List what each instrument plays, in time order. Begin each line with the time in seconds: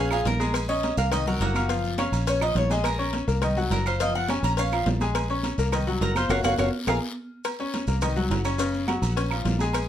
Already playing: fingered electric bass A#1, cuban tres G#4
0.00 cuban tres F5
0.11 grand piano F3 F4 F5, cuban tres G#4 F5, high conga, low agogo, claves, maracas
0.25 fingered electric bass A#1, cuban tres A#4, cowbell, high conga, low timbale, short guiro, maracas
0.40 grand piano G#3 G#4 G#5, high conga, low agogo, short guiro, maracas
0.54 cowbell, high conga, low agogo, long guiro, claves, maracas
0.69 grand piano C#4 C#5 C#6, cuban tres D#5, high conga, maracas
0.83 cowbell, high conga, low timbale, low agogo, short guiro, maracas
0.97 fingered electric bass C2, grand piano A#3 A#4 A#5, cuban tres F5, short guiro, maracas
1.12 grand piano D#3 D#4 D#5, cuban tres D#5, cowbell, high conga, low conga, low agogo, long guiro, claves, maracas
1.26 grand piano F#3 F#4 F#5, cuban tres A#4, high conga, low conga, maracas
1.40 fingered electric bass F#1, cuban tres A#3 F#4, cowbell, high conga, low timbale, low agogo, short guiro, maracas
1.54 grand piano F4 F5 F6, high conga, low agogo, short guiro, claves, maracas
1.69 grand piano F3 F4 F5, cowbell, high conga, long guiro, maracas
1.84 high conga, maracas
1.98 grand piano C#4 C#5 C#6, cuban tres F5, cowbell, high conga, low timbale, low agogo, short guiro, claves, maracas
2.12 fingered electric bass A#1, high conga, low agogo, short guiro, maracas
2.26 grand piano C#4 C#5 C#6, cuban tres C#5, cowbell, high conga, long guiro, maracas
2.41 grand piano F3 F4 F5, cuban tres D#5, high conga, low agogo, claves, maracas
2.55 fingered electric bass A#1, cuban tres C#5, cowbell, high conga, low timbale, short guiro, maracas
2.70 grand piano G#3 G#4 G#5, cuban tres D#5, high conga, low agogo, short guiro, maracas
2.84 cuban tres A#4, cowbell, high conga, low agogo, long guiro, claves, maracas
2.99 grand piano C#4 C#5 C#6, high conga, maracas
3.13 cowbell, high conga, low timbale, low agogo, short guiro, maracas
3.27 fingered electric bass C2, grand piano A#3 A#4 A#5, short guiro, maracas
3.42 grand piano D#3 D#4 D#5, cowbell, high conga, low conga, low agogo, long guiro, claves, maracas
3.57 grand piano F#3 F#4 F#5, high conga, low conga, maracas
3.70 fingered electric bass F#1, cuban tres A#4, cowbell, high conga, low timbale, low agogo, short guiro, maracas
3.86 grand piano F4 F5 F6, cuban tres C5, low agogo, short guiro, claves, maracas
4.00 grand piano F3 F4 F5, cuban tres D#5, cowbell, high conga, long guiro, maracas
4.14 cuban tres F#5, high conga, maracas
4.28 grand piano C#4 C#5 C#6, cuban tres G#5, cowbell, high conga, low timbale, low agogo, short guiro, claves, maracas
4.43 fingered electric bass A#1, cuban tres A#5, low agogo, short guiro, maracas
4.57 grand piano C#4 C#5 C#6, cuban tres F5, cowbell, high conga, long guiro, maracas
4.72 grand piano F3 F4 F5, high conga, low agogo, claves, maracas
4.86 fingered electric bass A#1, cowbell, high conga, low timbale, short guiro, maracas
5.00 grand piano G#3 G#4 G#5, high conga, low agogo, short guiro, maracas
5.15 cowbell, high conga, low agogo, long guiro, claves, maracas
5.29 grand piano C#4 C#5 C#6, high conga, maracas
5.43 cowbell, high conga, low timbale, low agogo, short guiro, maracas
5.58 fingered electric bass C2, grand piano A#3 A#4 A#5, short guiro, maracas
5.72 grand piano D#3 D#4 D#5, cowbell, high conga, low conga, low agogo, long guiro, claves, maracas
5.87 grand piano F#3 F#4 F#5, high conga, maracas
6.01 fingered electric bass F#1, cuban tres A#4, cowbell, high conga, low timbale, low agogo, short guiro, maracas
6.15 grand piano F4 F5 F6, cuban tres C5, high conga, low agogo, short guiro, claves, maracas
6.29 fingered electric bass F#1, grand piano F4 F#4 A#4, cuban tres C#5 F5 F#5, cowbell, high conga, high timbale, long guiro, claves, maracas
6.43 fingered electric bass F#1, grand piano F4 F#4 A#4, cuban tres C#5 F5 F#5, cowbell, high conga, high timbale, long guiro, claves, maracas
6.58 fingered electric bass F#1, grand piano F4 F#4 A#4, cuban tres C#5 F5 F#5, cowbell, high conga, high timbale, long guiro, claves, maracas
6.87 fingered electric bass A#1, grand piano F4 G#4 A#4, cuban tres F5 G#5 A#5, cowbell, high conga, high timbale, long guiro, claves, maracas
7.45 cowbell, high conga, low agogo, long guiro, claves, maracas
7.59 grand piano C#4 C#5 C#6, high conga, maracas
7.74 cowbell, high conga, low timbale, low agogo, short guiro, maracas
7.87 fingered electric bass C2, grand piano A#3 A#4 A#5, short guiro, maracas
8.02 grand piano D#3 D#4 D#5, cowbell, high conga, low conga, low agogo, long guiro, claves, maracas
8.16 grand piano F#3 F#4 F#5, high conga, low conga, maracas
8.30 fingered electric bass F#1, cowbell, high conga, low timbale, low agogo, short guiro, maracas
8.45 grand piano C#4 C#5 C#6, low agogo, short guiro, claves, maracas
8.58 grand piano C#3 C#4 C#5, cowbell, high conga, maracas
8.73 high conga, maracas
8.87 grand piano F#3 F#4 F#5, cowbell, high conga, low timbale, low agogo, short guiro, claves, maracas
9.02 fingered electric bass A#1, low agogo, short guiro, maracas
9.16 grand piano C#4 C#5 C#6, cowbell, high conga, long guiro, maracas
9.31 grand piano F3 F4 F5, high conga, low agogo, claves, maracas
9.45 fingered electric bass A#1, cowbell, high conga, low timbale, short guiro, maracas
9.59 grand piano G#3 G#4 G#5, high conga, low agogo, short guiro, maracas
9.73 cowbell, high conga, low agogo, long guiro, claves, maracas